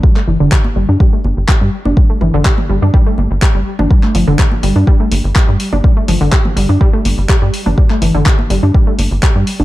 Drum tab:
HH |----------------|----------------|--o---o---o---o-|--o---o---o---o-|
CP |-x--x-------x---|----x-------x---|-x--x-------x---|----x-------x---|
T2 |----------------|--o--o---------o|----------------|--o--o---------o|
CG |-----o----o----o|-----o----o----o|-----o----o----o|-----o----o----o|
BD |o---o---o---o---|o---o---o---o---|o---o---o---o---|o---o---o---o---|

HH |--o---o---o---o-|
CP |-x--x-------x---|
T2 |----------------|
CG |-----o----o----o|
BD |o---o---o---o---|